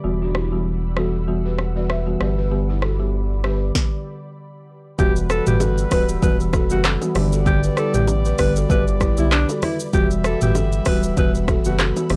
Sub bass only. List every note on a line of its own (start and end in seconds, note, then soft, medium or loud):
0.04 2.16 E1 medium
2.20 3.71 G1 medium
4.99 5.41 E1 loud
5.47 5.86 G1 medium
5.92 6.19 D1 loud
6.23 6.72 E1 loud
6.70 6.97 F#1 medium
7.15 7.69 G1 loud
7.94 8.33 A1 medium
8.39 8.66 G1 medium
8.70 9.12 G1 loud
9.18 9.45 B1 loud
9.93 10.35 E1 loud
10.41 10.81 G1 medium
10.86 11.13 D1 medium
11.17 11.59 E1 loud
11.65 11.92 F#1 medium
12.10 12.16 G1 loud